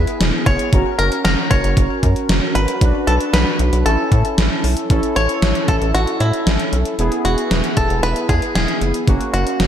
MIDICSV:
0, 0, Header, 1, 5, 480
1, 0, Start_track
1, 0, Key_signature, 3, "major"
1, 0, Tempo, 521739
1, 669, Time_signature, 4, 2, 24, 8
1, 8897, End_track
2, 0, Start_track
2, 0, Title_t, "Five-string banjo"
2, 0, Program_c, 0, 105
2, 0, Note_on_c, 0, 71, 104
2, 390, Note_off_c, 0, 71, 0
2, 426, Note_on_c, 0, 73, 100
2, 873, Note_off_c, 0, 73, 0
2, 906, Note_on_c, 0, 70, 85
2, 1135, Note_off_c, 0, 70, 0
2, 1146, Note_on_c, 0, 70, 85
2, 1370, Note_off_c, 0, 70, 0
2, 1385, Note_on_c, 0, 73, 96
2, 2343, Note_off_c, 0, 73, 0
2, 2347, Note_on_c, 0, 71, 92
2, 2823, Note_off_c, 0, 71, 0
2, 2827, Note_on_c, 0, 69, 81
2, 2892, Note_off_c, 0, 69, 0
2, 3067, Note_on_c, 0, 71, 84
2, 3544, Note_off_c, 0, 71, 0
2, 3548, Note_on_c, 0, 69, 80
2, 3995, Note_off_c, 0, 69, 0
2, 4748, Note_on_c, 0, 73, 102
2, 5226, Note_off_c, 0, 73, 0
2, 5230, Note_on_c, 0, 69, 85
2, 5295, Note_off_c, 0, 69, 0
2, 5469, Note_on_c, 0, 66, 90
2, 5692, Note_off_c, 0, 66, 0
2, 5710, Note_on_c, 0, 64, 77
2, 6156, Note_off_c, 0, 64, 0
2, 6668, Note_on_c, 0, 66, 82
2, 7148, Note_on_c, 0, 69, 87
2, 7163, Note_off_c, 0, 66, 0
2, 7371, Note_off_c, 0, 69, 0
2, 7388, Note_on_c, 0, 71, 107
2, 7611, Note_off_c, 0, 71, 0
2, 7628, Note_on_c, 0, 68, 87
2, 7858, Note_off_c, 0, 68, 0
2, 7869, Note_on_c, 0, 68, 78
2, 8204, Note_off_c, 0, 68, 0
2, 8588, Note_on_c, 0, 66, 81
2, 8897, Note_off_c, 0, 66, 0
2, 8897, End_track
3, 0, Start_track
3, 0, Title_t, "Analog polysynth"
3, 0, Program_c, 1, 90
3, 0, Note_on_c, 1, 59, 67
3, 0, Note_on_c, 1, 64, 59
3, 0, Note_on_c, 1, 68, 75
3, 632, Note_off_c, 1, 59, 0
3, 632, Note_off_c, 1, 64, 0
3, 632, Note_off_c, 1, 68, 0
3, 669, Note_on_c, 1, 61, 67
3, 670, Note_on_c, 1, 66, 62
3, 670, Note_on_c, 1, 70, 72
3, 2552, Note_off_c, 1, 61, 0
3, 2552, Note_off_c, 1, 66, 0
3, 2552, Note_off_c, 1, 70, 0
3, 2589, Note_on_c, 1, 62, 65
3, 2589, Note_on_c, 1, 66, 62
3, 2589, Note_on_c, 1, 71, 72
3, 3529, Note_off_c, 1, 62, 0
3, 3529, Note_off_c, 1, 66, 0
3, 3529, Note_off_c, 1, 71, 0
3, 3549, Note_on_c, 1, 61, 66
3, 3549, Note_on_c, 1, 64, 60
3, 3549, Note_on_c, 1, 69, 73
3, 4489, Note_off_c, 1, 61, 0
3, 4489, Note_off_c, 1, 64, 0
3, 4489, Note_off_c, 1, 69, 0
3, 4509, Note_on_c, 1, 61, 76
3, 4509, Note_on_c, 1, 64, 70
3, 4510, Note_on_c, 1, 69, 84
3, 6392, Note_off_c, 1, 61, 0
3, 6392, Note_off_c, 1, 64, 0
3, 6392, Note_off_c, 1, 69, 0
3, 6429, Note_on_c, 1, 59, 76
3, 6429, Note_on_c, 1, 64, 72
3, 6429, Note_on_c, 1, 68, 84
3, 8312, Note_off_c, 1, 59, 0
3, 8312, Note_off_c, 1, 64, 0
3, 8312, Note_off_c, 1, 68, 0
3, 8349, Note_on_c, 1, 58, 74
3, 8349, Note_on_c, 1, 61, 69
3, 8349, Note_on_c, 1, 66, 83
3, 8897, Note_off_c, 1, 58, 0
3, 8897, Note_off_c, 1, 61, 0
3, 8897, Note_off_c, 1, 66, 0
3, 8897, End_track
4, 0, Start_track
4, 0, Title_t, "Analog synth bass"
4, 0, Program_c, 2, 38
4, 188, Note_on_c, 2, 28, 97
4, 295, Note_off_c, 2, 28, 0
4, 426, Note_on_c, 2, 30, 94
4, 534, Note_off_c, 2, 30, 0
4, 669, Note_on_c, 2, 30, 104
4, 775, Note_off_c, 2, 30, 0
4, 909, Note_on_c, 2, 30, 99
4, 1015, Note_off_c, 2, 30, 0
4, 1149, Note_on_c, 2, 30, 95
4, 1255, Note_off_c, 2, 30, 0
4, 1388, Note_on_c, 2, 30, 110
4, 1495, Note_off_c, 2, 30, 0
4, 1509, Note_on_c, 2, 30, 102
4, 1615, Note_off_c, 2, 30, 0
4, 1628, Note_on_c, 2, 30, 108
4, 1734, Note_off_c, 2, 30, 0
4, 1868, Note_on_c, 2, 42, 100
4, 1974, Note_off_c, 2, 42, 0
4, 2108, Note_on_c, 2, 30, 96
4, 2214, Note_off_c, 2, 30, 0
4, 2348, Note_on_c, 2, 32, 94
4, 2454, Note_off_c, 2, 32, 0
4, 2589, Note_on_c, 2, 35, 100
4, 2695, Note_off_c, 2, 35, 0
4, 2827, Note_on_c, 2, 35, 102
4, 2934, Note_off_c, 2, 35, 0
4, 3067, Note_on_c, 2, 35, 107
4, 3174, Note_off_c, 2, 35, 0
4, 3307, Note_on_c, 2, 35, 102
4, 3414, Note_off_c, 2, 35, 0
4, 3426, Note_on_c, 2, 35, 94
4, 3534, Note_off_c, 2, 35, 0
4, 3547, Note_on_c, 2, 33, 107
4, 3654, Note_off_c, 2, 33, 0
4, 3787, Note_on_c, 2, 45, 99
4, 3894, Note_off_c, 2, 45, 0
4, 4028, Note_on_c, 2, 33, 95
4, 4134, Note_off_c, 2, 33, 0
4, 4268, Note_on_c, 2, 35, 81
4, 4375, Note_off_c, 2, 35, 0
4, 4508, Note_on_c, 2, 33, 107
4, 4615, Note_off_c, 2, 33, 0
4, 4749, Note_on_c, 2, 33, 100
4, 4855, Note_off_c, 2, 33, 0
4, 4988, Note_on_c, 2, 33, 101
4, 5094, Note_off_c, 2, 33, 0
4, 5228, Note_on_c, 2, 33, 97
4, 5335, Note_off_c, 2, 33, 0
4, 5348, Note_on_c, 2, 33, 99
4, 5454, Note_off_c, 2, 33, 0
4, 5468, Note_on_c, 2, 33, 102
4, 5575, Note_off_c, 2, 33, 0
4, 5708, Note_on_c, 2, 45, 101
4, 5814, Note_off_c, 2, 45, 0
4, 5948, Note_on_c, 2, 33, 93
4, 6054, Note_off_c, 2, 33, 0
4, 6189, Note_on_c, 2, 35, 93
4, 6295, Note_off_c, 2, 35, 0
4, 6428, Note_on_c, 2, 28, 108
4, 6535, Note_off_c, 2, 28, 0
4, 6667, Note_on_c, 2, 28, 98
4, 6774, Note_off_c, 2, 28, 0
4, 6907, Note_on_c, 2, 28, 98
4, 7014, Note_off_c, 2, 28, 0
4, 7148, Note_on_c, 2, 28, 97
4, 7254, Note_off_c, 2, 28, 0
4, 7268, Note_on_c, 2, 28, 93
4, 7374, Note_off_c, 2, 28, 0
4, 7387, Note_on_c, 2, 28, 104
4, 7494, Note_off_c, 2, 28, 0
4, 7628, Note_on_c, 2, 40, 96
4, 7734, Note_off_c, 2, 40, 0
4, 7867, Note_on_c, 2, 28, 97
4, 7974, Note_off_c, 2, 28, 0
4, 8108, Note_on_c, 2, 30, 92
4, 8214, Note_off_c, 2, 30, 0
4, 8349, Note_on_c, 2, 30, 105
4, 8455, Note_off_c, 2, 30, 0
4, 8589, Note_on_c, 2, 30, 96
4, 8695, Note_off_c, 2, 30, 0
4, 8829, Note_on_c, 2, 30, 95
4, 8897, Note_off_c, 2, 30, 0
4, 8897, End_track
5, 0, Start_track
5, 0, Title_t, "Drums"
5, 68, Note_on_c, 9, 42, 45
5, 160, Note_off_c, 9, 42, 0
5, 189, Note_on_c, 9, 42, 68
5, 190, Note_on_c, 9, 38, 113
5, 281, Note_off_c, 9, 42, 0
5, 282, Note_off_c, 9, 38, 0
5, 426, Note_on_c, 9, 36, 97
5, 429, Note_on_c, 9, 42, 80
5, 518, Note_off_c, 9, 36, 0
5, 521, Note_off_c, 9, 42, 0
5, 545, Note_on_c, 9, 42, 64
5, 637, Note_off_c, 9, 42, 0
5, 668, Note_on_c, 9, 36, 103
5, 668, Note_on_c, 9, 42, 75
5, 760, Note_off_c, 9, 36, 0
5, 760, Note_off_c, 9, 42, 0
5, 909, Note_on_c, 9, 42, 76
5, 1001, Note_off_c, 9, 42, 0
5, 1028, Note_on_c, 9, 42, 57
5, 1120, Note_off_c, 9, 42, 0
5, 1150, Note_on_c, 9, 38, 110
5, 1150, Note_on_c, 9, 42, 78
5, 1242, Note_off_c, 9, 38, 0
5, 1242, Note_off_c, 9, 42, 0
5, 1387, Note_on_c, 9, 42, 85
5, 1389, Note_on_c, 9, 36, 89
5, 1479, Note_off_c, 9, 42, 0
5, 1481, Note_off_c, 9, 36, 0
5, 1510, Note_on_c, 9, 42, 55
5, 1602, Note_off_c, 9, 42, 0
5, 1628, Note_on_c, 9, 36, 96
5, 1630, Note_on_c, 9, 42, 84
5, 1720, Note_off_c, 9, 36, 0
5, 1722, Note_off_c, 9, 42, 0
5, 1868, Note_on_c, 9, 36, 88
5, 1868, Note_on_c, 9, 42, 75
5, 1960, Note_off_c, 9, 36, 0
5, 1960, Note_off_c, 9, 42, 0
5, 1988, Note_on_c, 9, 42, 47
5, 2080, Note_off_c, 9, 42, 0
5, 2110, Note_on_c, 9, 38, 120
5, 2110, Note_on_c, 9, 42, 66
5, 2202, Note_off_c, 9, 38, 0
5, 2202, Note_off_c, 9, 42, 0
5, 2349, Note_on_c, 9, 42, 79
5, 2441, Note_off_c, 9, 42, 0
5, 2466, Note_on_c, 9, 42, 65
5, 2558, Note_off_c, 9, 42, 0
5, 2589, Note_on_c, 9, 36, 106
5, 2589, Note_on_c, 9, 42, 76
5, 2681, Note_off_c, 9, 36, 0
5, 2681, Note_off_c, 9, 42, 0
5, 2829, Note_on_c, 9, 42, 78
5, 2921, Note_off_c, 9, 42, 0
5, 2949, Note_on_c, 9, 42, 56
5, 3041, Note_off_c, 9, 42, 0
5, 3070, Note_on_c, 9, 38, 110
5, 3070, Note_on_c, 9, 42, 79
5, 3162, Note_off_c, 9, 38, 0
5, 3162, Note_off_c, 9, 42, 0
5, 3306, Note_on_c, 9, 42, 81
5, 3398, Note_off_c, 9, 42, 0
5, 3430, Note_on_c, 9, 42, 55
5, 3522, Note_off_c, 9, 42, 0
5, 3550, Note_on_c, 9, 42, 81
5, 3642, Note_off_c, 9, 42, 0
5, 3788, Note_on_c, 9, 36, 91
5, 3788, Note_on_c, 9, 42, 74
5, 3880, Note_off_c, 9, 36, 0
5, 3880, Note_off_c, 9, 42, 0
5, 3908, Note_on_c, 9, 42, 46
5, 4000, Note_off_c, 9, 42, 0
5, 4030, Note_on_c, 9, 38, 110
5, 4030, Note_on_c, 9, 42, 68
5, 4122, Note_off_c, 9, 38, 0
5, 4122, Note_off_c, 9, 42, 0
5, 4269, Note_on_c, 9, 46, 78
5, 4361, Note_off_c, 9, 46, 0
5, 4385, Note_on_c, 9, 42, 65
5, 4477, Note_off_c, 9, 42, 0
5, 4508, Note_on_c, 9, 42, 74
5, 4509, Note_on_c, 9, 36, 103
5, 4600, Note_off_c, 9, 42, 0
5, 4601, Note_off_c, 9, 36, 0
5, 4628, Note_on_c, 9, 42, 57
5, 4720, Note_off_c, 9, 42, 0
5, 4750, Note_on_c, 9, 42, 75
5, 4842, Note_off_c, 9, 42, 0
5, 4868, Note_on_c, 9, 42, 53
5, 4960, Note_off_c, 9, 42, 0
5, 4990, Note_on_c, 9, 38, 105
5, 4990, Note_on_c, 9, 42, 73
5, 5082, Note_off_c, 9, 38, 0
5, 5082, Note_off_c, 9, 42, 0
5, 5108, Note_on_c, 9, 42, 55
5, 5200, Note_off_c, 9, 42, 0
5, 5227, Note_on_c, 9, 42, 81
5, 5228, Note_on_c, 9, 36, 84
5, 5319, Note_off_c, 9, 42, 0
5, 5320, Note_off_c, 9, 36, 0
5, 5351, Note_on_c, 9, 42, 53
5, 5443, Note_off_c, 9, 42, 0
5, 5470, Note_on_c, 9, 42, 79
5, 5562, Note_off_c, 9, 42, 0
5, 5588, Note_on_c, 9, 42, 54
5, 5680, Note_off_c, 9, 42, 0
5, 5708, Note_on_c, 9, 42, 73
5, 5800, Note_off_c, 9, 42, 0
5, 5828, Note_on_c, 9, 42, 45
5, 5920, Note_off_c, 9, 42, 0
5, 5950, Note_on_c, 9, 42, 64
5, 5951, Note_on_c, 9, 38, 112
5, 6042, Note_off_c, 9, 42, 0
5, 6043, Note_off_c, 9, 38, 0
5, 6067, Note_on_c, 9, 42, 60
5, 6159, Note_off_c, 9, 42, 0
5, 6189, Note_on_c, 9, 42, 74
5, 6281, Note_off_c, 9, 42, 0
5, 6306, Note_on_c, 9, 42, 62
5, 6398, Note_off_c, 9, 42, 0
5, 6429, Note_on_c, 9, 42, 73
5, 6521, Note_off_c, 9, 42, 0
5, 6548, Note_on_c, 9, 42, 56
5, 6640, Note_off_c, 9, 42, 0
5, 6670, Note_on_c, 9, 42, 76
5, 6762, Note_off_c, 9, 42, 0
5, 6788, Note_on_c, 9, 42, 55
5, 6880, Note_off_c, 9, 42, 0
5, 6909, Note_on_c, 9, 42, 74
5, 6910, Note_on_c, 9, 38, 104
5, 7001, Note_off_c, 9, 42, 0
5, 7002, Note_off_c, 9, 38, 0
5, 7027, Note_on_c, 9, 42, 54
5, 7119, Note_off_c, 9, 42, 0
5, 7146, Note_on_c, 9, 42, 82
5, 7148, Note_on_c, 9, 36, 86
5, 7238, Note_off_c, 9, 42, 0
5, 7240, Note_off_c, 9, 36, 0
5, 7270, Note_on_c, 9, 42, 52
5, 7362, Note_off_c, 9, 42, 0
5, 7390, Note_on_c, 9, 42, 77
5, 7482, Note_off_c, 9, 42, 0
5, 7507, Note_on_c, 9, 42, 54
5, 7599, Note_off_c, 9, 42, 0
5, 7628, Note_on_c, 9, 36, 87
5, 7628, Note_on_c, 9, 42, 73
5, 7720, Note_off_c, 9, 36, 0
5, 7720, Note_off_c, 9, 42, 0
5, 7748, Note_on_c, 9, 42, 45
5, 7840, Note_off_c, 9, 42, 0
5, 7870, Note_on_c, 9, 42, 65
5, 7871, Note_on_c, 9, 38, 112
5, 7962, Note_off_c, 9, 42, 0
5, 7963, Note_off_c, 9, 38, 0
5, 7988, Note_on_c, 9, 42, 59
5, 8080, Note_off_c, 9, 42, 0
5, 8110, Note_on_c, 9, 42, 76
5, 8202, Note_off_c, 9, 42, 0
5, 8227, Note_on_c, 9, 42, 62
5, 8319, Note_off_c, 9, 42, 0
5, 8349, Note_on_c, 9, 36, 101
5, 8350, Note_on_c, 9, 42, 72
5, 8441, Note_off_c, 9, 36, 0
5, 8442, Note_off_c, 9, 42, 0
5, 8469, Note_on_c, 9, 42, 58
5, 8561, Note_off_c, 9, 42, 0
5, 8590, Note_on_c, 9, 42, 72
5, 8682, Note_off_c, 9, 42, 0
5, 8709, Note_on_c, 9, 42, 55
5, 8801, Note_off_c, 9, 42, 0
5, 8831, Note_on_c, 9, 38, 104
5, 8831, Note_on_c, 9, 42, 74
5, 8897, Note_off_c, 9, 38, 0
5, 8897, Note_off_c, 9, 42, 0
5, 8897, End_track
0, 0, End_of_file